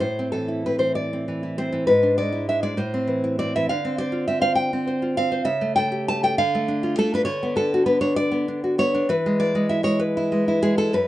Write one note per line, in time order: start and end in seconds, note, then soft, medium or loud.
0.00 1.84 A2 soft
0.00 0.32 C5 medium
0.19 0.65 C4 soft
0.32 0.77 E3 soft
0.32 0.64 A4 medium
0.48 1.42 E4 soft
0.66 1.12 C4 soft
0.66 0.79 B4 medium
0.79 1.27 E3 soft
0.79 0.95 C5 medium
0.95 1.56 D5 medium
1.13 1.57 C4 soft
1.28 1.71 E3 soft
1.43 1.90 E4 soft
1.58 1.90 C4 soft
1.58 1.87 C5 medium
1.72 1.89 E3 soft
1.87 2.77 G#2 soft
1.87 2.17 B4 medium
2.03 2.48 D4 soft
2.18 2.62 G#3 soft
2.18 2.48 D5 medium
2.32 2.77 E4 soft
2.49 2.80 D4 soft
2.49 2.62 E5 medium
2.63 2.77 G#3 soft
2.63 2.79 D5 medium
2.77 3.67 A2 medium
2.77 3.37 C5 medium
2.94 3.38 C4 soft
3.07 3.55 E3 soft
3.24 3.70 E4 soft
3.39 3.70 C4 soft
3.39 3.55 D5 medium
3.56 3.70 E3 soft
3.56 3.69 E5 medium
3.69 5.43 D3 medium
3.69 3.98 F5 medium
3.85 4.27 C4 soft
3.98 4.40 C5 soft
3.98 4.27 D5 medium
4.12 5.01 F4 soft
4.28 4.72 C4 soft
4.28 4.41 E5 medium
4.41 4.86 C5 medium
4.41 4.55 F5 medium
4.55 5.14 G5 medium
4.73 5.17 C4 medium
4.87 5.30 C5 medium
5.02 5.47 F4 soft
5.17 5.47 C4 soft
5.17 5.45 F5 loud
5.32 5.47 C5 medium
5.45 6.34 C#3 medium
5.45 5.75 E5 medium
5.61 6.08 A3 medium
5.76 6.22 A4 medium
5.76 6.06 G5 medium
5.92 6.38 G4 medium
6.08 6.39 A3 soft
6.08 6.23 A5 medium
6.23 6.38 A4 medium
6.23 6.38 G5 medium
6.38 6.98 D3 medium
6.38 6.95 F5 medium
6.55 6.97 A3 medium
6.68 7.12 D4 medium
6.83 7.27 F4 medium
6.98 7.25 A3 medium
6.98 7.13 A4 medium
7.14 7.28 D4 medium
7.14 7.24 B4 medium
7.25 9.03 D3 medium
7.25 7.54 C#5 medium
7.43 7.74 B3 medium
7.56 8.00 D4 medium
7.56 7.85 A4 medium
7.74 7.86 F#4 medium
7.86 8.30 B3 medium
7.86 8.01 B4 medium
8.01 8.47 D4 medium
8.01 8.16 C#5 medium
8.16 8.74 D5 medium
8.32 8.63 B3 medium
8.48 8.93 D4 medium
8.64 8.78 F#4 medium
8.78 9.09 B3 medium
8.78 9.08 C#5 loud
8.95 9.09 D4 medium
9.09 10.89 E3 medium
9.09 9.39 B4 medium
9.26 9.54 G#3 medium
9.40 9.69 E4 medium
9.40 9.69 D5 medium
9.55 9.82 G#3 medium
9.69 10.16 E4 medium
9.69 9.84 E5 medium
9.83 10.31 G#3 medium
9.83 10.00 C#5 medium
10.00 10.58 B4 medium
10.17 10.47 E4 medium
10.32 10.61 G#3 medium
10.48 10.77 E4 medium
10.62 10.93 G#3 medium
10.62 10.77 G#4 loud
10.78 10.93 E4 medium
10.78 10.93 A4 medium
10.93 11.08 F#2 medium
10.93 11.08 B4 medium